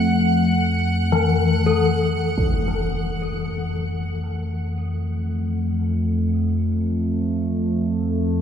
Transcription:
0.00 2.36 F2 medium
0.00 2.36 A3 medium
0.00 2.41 F#5 medium
1.12 7.33 E3 medium
1.66 2.91 A4 medium
2.37 8.41 F2 medium
2.37 8.41 A3 medium
2.37 impact medium

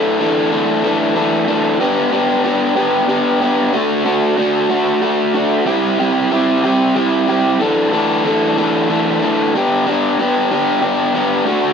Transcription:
0.00 0.18 E3 medium
0.00 0.20 A3 medium
0.00 0.20 D4 medium
0.00 0.20 A4 medium
0.20 0.50 E3 medium
0.20 0.52 A3 medium
0.20 0.52 D4 loud
0.20 0.52 A4 medium
0.51 0.82 E3 medium
0.51 0.83 A3 medium
0.51 0.83 D4 medium
0.51 0.84 A4 medium
0.83 1.14 E3 medium
0.83 1.15 A3 loud
0.83 1.16 D4 medium
0.83 1.16 A4 medium
1.15 1.46 E3 medium
1.15 1.47 A3 medium
1.15 1.47 D4 medium
1.15 1.48 A4 medium
1.47 1.78 E3 medium
1.47 1.79 A3 medium
1.47 1.80 D4 medium
1.47 1.80 A4 medium
1.80 2.11 B3 loud
1.80 2.12 D4 loud
1.80 2.12 G4 loud
2.12 2.43 B3 medium
2.12 2.44 D4 medium
2.12 2.44 G4 medium
2.44 2.75 B3 medium
2.44 2.76 D4 medium
2.44 2.76 G4 medium
2.76 3.07 B3 medium
2.76 3.09 D4 medium
2.76 3.08 G4 medium
3.09 3.40 B3 medium
3.09 3.42 D4 medium
3.09 3.41 G4 loud
3.41 3.72 B3 medium
3.41 3.73 D4 medium
3.41 3.72 G4 medium
3.73 4.03 A3 medium
3.73 4.05 D4 medium
3.73 4.04 F#4 loud
4.05 4.36 A3 medium
4.05 4.37 D4 medium
4.05 4.37 F#4 loud
4.37 4.68 A3 medium
4.37 4.70 D4 medium
4.37 4.69 F#4 medium
4.69 5.00 A3 medium
4.69 5.01 D4 medium
4.69 5.01 F#4 medium
5.02 5.33 A3 medium
5.02 5.34 D4 medium
5.02 5.34 F#4 medium
5.34 5.65 A3 medium
5.34 5.66 D4 medium
5.34 5.65 F#4 medium
5.66 5.98 G3 medium
5.66 5.98 C4 medium
5.66 5.99 E4 loud
5.66 5.99 G4 loud
5.99 6.30 G3 medium
5.99 6.31 C4 medium
5.99 6.31 E4 medium
5.99 6.31 G4 medium
6.31 6.63 G3 medium
6.31 6.62 C4 medium
6.31 6.63 E4 medium
6.31 6.63 G4 loud
6.64 6.94 G3 medium
6.64 6.95 C4 medium
6.64 6.95 E4 medium
6.64 6.95 G4 medium
6.95 7.26 G3 medium
6.95 7.27 C4 medium
6.95 7.27 E4 medium
6.95 7.28 G4 medium
7.27 7.58 G3 medium
7.27 7.58 C4 medium
7.27 7.58 E4 medium
7.27 7.59 G4 medium
7.60 7.92 E3 medium
7.60 7.93 A3 medium
7.60 7.93 D4 loud
7.60 7.93 A4 loud
7.93 8.24 E3 medium
7.93 8.25 A3 medium
7.93 8.25 D4 loud
7.93 8.26 A4 loud
8.25 8.56 E3 medium
8.25 8.58 A3 medium
8.25 8.58 D4 medium
8.25 8.58 A4 loud
8.57 8.88 E3 medium
8.57 8.89 A3 medium
8.57 8.90 D4 medium
8.57 8.89 A4 medium
8.89 9.20 E3 medium
8.89 9.22 A3 medium
8.89 9.22 D4 medium
8.89 9.22 A4 loud
9.22 9.52 E3 medium
9.22 9.55 A3 medium
9.22 9.55 D4 medium
9.22 9.55 A4 medium
9.55 9.85 B3 medium
9.55 9.87 D4 medium
9.55 9.86 G4 loud
9.87 10.18 B3 medium
9.87 10.19 D4 loud
9.87 10.18 G4 loud
10.19 10.50 B3 medium
10.19 10.51 D4 medium
10.19 10.50 G4 loud
10.51 10.81 B3 medium
10.51 10.82 D4 medium
10.51 10.81 G4 loud
10.82 11.13 B3 medium
10.82 11.14 D4 medium
10.82 11.14 G4 loud
11.15 11.45 B3 medium
11.15 11.46 D4 medium
11.15 11.45 G4 loud
11.46 11.73 A3 loud
11.46 11.73 D4 loud
11.46 11.73 F#4 loud

